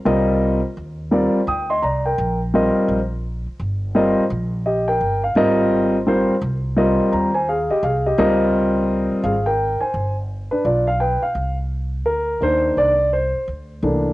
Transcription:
0.05 C2 G3 C4 F4 A#4 D#5
0.64 muted upright bass stroke
0.77 D#2
1.11 G3 C4 F4 A#4 D5
1.34 muted upright bass stroke
1.47 D2 G5 D#6
1.70 D#5 C6
1.82 C2 D5 A#5
2.05 A#4 G5
2.18 A#1
2.54 G3 C4 F4 A#4 D#5
2.76 muted upright bass stroke
2.88 A#1
3.46 muted upright bass stroke
3.59 G1
3.95 G3 C4 F4 A#4 D#5
4.17 muted upright bass stroke
4.30 A#1
4.66 G4 D#5
4.88 A#4 G5
5.01 G1
5.24 F5
5.35 G#1 G3 C4 F4 A#4 D#5
6.07 G3 C4 F4 A#4 C5
6.29 muted upright bass stroke
6.42 C2
6.77 G3 C4 F4 A#4 D#5
6.99 muted upright bass stroke
7.12 D#2 A#5
7.34 C5 G#5
7.49 G#4 F5
7.70 G4 D#5, muted upright bass stroke
7.83 C2 G#4 F5
8.06 G4 D#5
8.18 C#2 G3 C4 F4 A#4 D#5
9.10 muted upright bass stroke
9.24 G#1 G#4 F5
9.46 A#4 G5
9.81 C5 G#5, muted upright bass stroke
9.94 G1
10.51 D4 B4, muted upright bass stroke
10.65 B1 F4 D5
10.87 F5
11.00 B4 G5
11.22 F5, muted upright bass stroke
11.35 C2
12.05 D2 A#4
12.40 D#2 D#3 A#3 D4 C5
12.77 C2 D5
13.13 C5
13.35 muted upright bass stroke
13.48 D2
13.83 C2 E3 A3 A#3 D4

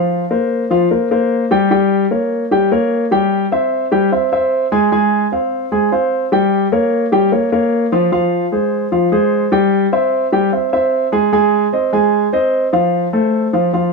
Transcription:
Already playing: F3 F4 F5
0.30 A#3 A#4 C5
0.70 F3 F4 F5
0.91 A#3 A#4 C5
1.11 A#3 A#4 C5
1.51 G3 G4 G5
1.71 G3 G4 G5
2.11 A#3 A#4 C#5
2.51 G3 G4 G5
2.71 A#3 A#4 C#5
3.11 G3 G4 G5
3.52 C4 C5 E5
3.92 G3 G4 G5
4.12 C4 C5 E5
4.32 C4 C5 E5
4.72 G#3 G#4 G#5
4.92 G#3 G#4 G#5
5.32 C4 C5 F5
5.72 G#3 G#4 G#5
5.92 C4 C5 F5
6.32 G3 G4 G5
6.72 A#3 A#4 C#5
7.12 G3 G4 G5
7.32 A#3 A#4 C#5
7.52 A#3 A#4 C#5
7.92 F3 F4 F5
8.12 F3 F4 F5
8.52 G#3 G#4 C5
8.92 F3 F4 F5
9.12 G#3 G#4 C5
9.52 G3 G4 G5
9.92 C4 C5 E5
10.32 G3 G4 G5
10.52 C4 C5 E5
10.73 C4 C5 E5
11.12 G#3 G#4 G#5
11.33 G#3 G#4 G#5
11.73 C4 C5 D#5
11.93 G#3 G#4 G#5
12.33 C4 C5 D#5
12.73 F3 F4 F5
13.13 A3 A4 C5
13.53 F3 F4 F5
13.73 F3 F4 F5

